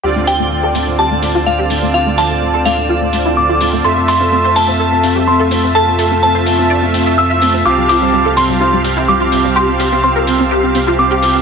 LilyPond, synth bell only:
\new Staff \with { instrumentName = "Synth bell" } { \time 4/4 \key d \minor \tempo 4 = 126 r8 g''4 r8 a''4 f''4 | f''8 a''4 f''4. d'''4 | c'''8 c'''4 a''4. c'''4 | a''4 a''2 e'''4 |
d'''8 d'''4 c'''4. d'''4 | c'''4 c'''2 d'''4 | }